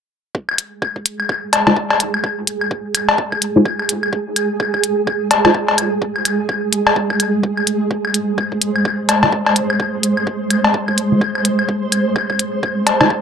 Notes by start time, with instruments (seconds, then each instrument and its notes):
0.35 synth texture G#3 G#4, kick
0.49 claves
0.58 closed hi-hat
0.82 kick, claves
0.96 kick
1.06 closed hi-hat
1.20 claves
1.29 kick, claves
1.53 closed hi-hat, cowbell, claves
1.67 synth stab G#3 D#4 F4 C5, cowbell
1.76 kick
1.90 cowbell, claves
2.00 closed hi-hat
2.14 claves
2.24 kick, claves
2.47 closed hi-hat
2.61 claves
2.71 kick
2.95 closed hi-hat, claves
3.09 cowbell
3.18 kick
3.32 kick, claves
3.42 closed hi-hat
3.56 synth stab G#3 D#4 F4 C5
3.65 kick, claves
3.79 claves
3.89 closed hi-hat
4.03 claves
4.13 kick
4.36 closed hi-hat, claves
4.60 kick, claves
4.74 kick, claves
4.84 closed hi-hat
5.07 kick, claves
5.31 closed hi-hat, cowbell
5.45 synth stab G#3 D#4 F4 C5, cowbell, claves
5.54 kick
5.68 cowbell
5.78 closed hi-hat, claves
6.02 kick
6.16 claves
6.25 closed hi-hat, claves
6.49 kick, claves
6.73 closed hi-hat
6.87 cowbell, claves
6.96 kick
7.10 kick, claves
7.20 closed hi-hat, claves
7.43 kick
7.57 claves
7.67 closed hi-hat
7.91 synth texture C5, kick
8.05 claves
8.14 closed hi-hat
8.38 kick, claves
8.52 kick
8.62 closed hi-hat
8.76 claves
8.85 kick, claves
9.09 closed hi-hat, cowbell, claves
9.23 synth stab G#3 D#4 F4 C5, cowbell
9.32 kick
9.46 cowbell, claves
9.56 closed hi-hat
9.70 claves
9.80 kick, claves
10.03 closed hi-hat
10.17 claves
10.27 kick
10.50 closed hi-hat, claves
10.64 cowbell
10.74 kick
10.88 kick, claves
10.98 closed hi-hat
11.12 synth stab G#3 D#4 F4 C5
11.21 kick, claves
11.35 claves
11.45 closed hi-hat
11.59 claves
11.69 kick
11.92 closed hi-hat, claves
12.16 kick, claves
12.30 kick, claves
12.39 closed hi-hat
12.63 kick, claves
12.87 closed hi-hat, cowbell
13.01 synth stab G#3 D#4 F4 C5, cowbell, claves
13.10 kick